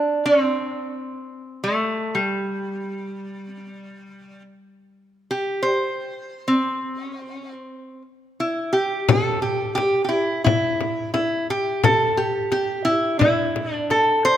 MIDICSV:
0, 0, Header, 1, 3, 480
1, 0, Start_track
1, 0, Tempo, 689655
1, 564, Time_signature, 4, 2, 24, 8
1, 10002, End_track
2, 0, Start_track
2, 0, Title_t, "Resonator guitar played with a steel bar"
2, 0, Program_c, 0, 25
2, 0, Note_on_c, 0, 62, 87
2, 175, Note_off_c, 0, 62, 0
2, 178, Note_on_c, 0, 60, 99
2, 1139, Note_on_c, 0, 57, 84
2, 1180, Note_off_c, 0, 60, 0
2, 1494, Note_on_c, 0, 55, 62
2, 1523, Note_off_c, 0, 57, 0
2, 3074, Note_off_c, 0, 55, 0
2, 3693, Note_on_c, 0, 67, 78
2, 3915, Note_on_c, 0, 72, 80
2, 3935, Note_off_c, 0, 67, 0
2, 4508, Note_on_c, 0, 60, 82
2, 4537, Note_off_c, 0, 72, 0
2, 4891, Note_off_c, 0, 60, 0
2, 4891, Note_on_c, 0, 61, 82
2, 4988, Note_off_c, 0, 61, 0
2, 4988, Note_on_c, 0, 60, 82
2, 5099, Note_off_c, 0, 60, 0
2, 5099, Note_on_c, 0, 61, 82
2, 5204, Note_off_c, 0, 61, 0
2, 5204, Note_on_c, 0, 60, 82
2, 5579, Note_off_c, 0, 60, 0
2, 5847, Note_on_c, 0, 64, 66
2, 6074, Note_on_c, 0, 67, 79
2, 6091, Note_off_c, 0, 64, 0
2, 6324, Note_off_c, 0, 67, 0
2, 6328, Note_on_c, 0, 69, 94
2, 6554, Note_off_c, 0, 69, 0
2, 6556, Note_on_c, 0, 67, 76
2, 6778, Note_off_c, 0, 67, 0
2, 6786, Note_on_c, 0, 67, 87
2, 6983, Note_off_c, 0, 67, 0
2, 6991, Note_on_c, 0, 67, 57
2, 7020, Note_on_c, 0, 64, 78
2, 7040, Note_off_c, 0, 67, 0
2, 7261, Note_off_c, 0, 64, 0
2, 7269, Note_on_c, 0, 64, 83
2, 7727, Note_off_c, 0, 64, 0
2, 7751, Note_on_c, 0, 64, 74
2, 7979, Note_off_c, 0, 64, 0
2, 8005, Note_on_c, 0, 67, 82
2, 8239, Note_off_c, 0, 67, 0
2, 8242, Note_on_c, 0, 69, 101
2, 8473, Note_on_c, 0, 67, 71
2, 8489, Note_off_c, 0, 69, 0
2, 8705, Note_off_c, 0, 67, 0
2, 8713, Note_on_c, 0, 67, 88
2, 8942, Note_on_c, 0, 64, 95
2, 8965, Note_off_c, 0, 67, 0
2, 9173, Note_off_c, 0, 64, 0
2, 9181, Note_on_c, 0, 64, 86
2, 9557, Note_off_c, 0, 64, 0
2, 9557, Note_on_c, 0, 62, 86
2, 9679, Note_on_c, 0, 69, 77
2, 9688, Note_off_c, 0, 62, 0
2, 9917, Note_on_c, 0, 72, 116
2, 9930, Note_off_c, 0, 69, 0
2, 10002, Note_off_c, 0, 72, 0
2, 10002, End_track
3, 0, Start_track
3, 0, Title_t, "Frame drum"
3, 6324, Note_on_c, 9, 64, 94
3, 6394, Note_off_c, 9, 64, 0
3, 6570, Note_on_c, 9, 64, 28
3, 6640, Note_off_c, 9, 64, 0
3, 6805, Note_on_c, 9, 64, 64
3, 6875, Note_off_c, 9, 64, 0
3, 7283, Note_on_c, 9, 64, 77
3, 7353, Note_off_c, 9, 64, 0
3, 7521, Note_on_c, 9, 64, 59
3, 7591, Note_off_c, 9, 64, 0
3, 7755, Note_on_c, 9, 64, 64
3, 7825, Note_off_c, 9, 64, 0
3, 8002, Note_on_c, 9, 64, 25
3, 8072, Note_off_c, 9, 64, 0
3, 8238, Note_on_c, 9, 64, 86
3, 8307, Note_off_c, 9, 64, 0
3, 8476, Note_on_c, 9, 64, 21
3, 8545, Note_off_c, 9, 64, 0
3, 8712, Note_on_c, 9, 64, 57
3, 8781, Note_off_c, 9, 64, 0
3, 8956, Note_on_c, 9, 64, 27
3, 9026, Note_off_c, 9, 64, 0
3, 9196, Note_on_c, 9, 64, 70
3, 9265, Note_off_c, 9, 64, 0
3, 9437, Note_on_c, 9, 64, 54
3, 9507, Note_off_c, 9, 64, 0
3, 9677, Note_on_c, 9, 64, 54
3, 9746, Note_off_c, 9, 64, 0
3, 9922, Note_on_c, 9, 64, 22
3, 9991, Note_off_c, 9, 64, 0
3, 10002, End_track
0, 0, End_of_file